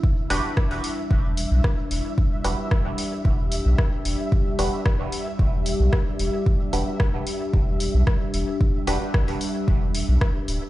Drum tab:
HH |--o--oo---o---o-|--o---o---o---o-|--o---o---o---o-|--o---o---o---o-|
SD |----r-------r---|----r-------r---|----r-------r---|----r-------r---|
BD |o---o---o---o---|o---o---o---o---|o---o---o---o---|o---o---o---o---|

HH |--o--oo---o---o-|
SD |----r-------r---|
BD |o---o---o---o---|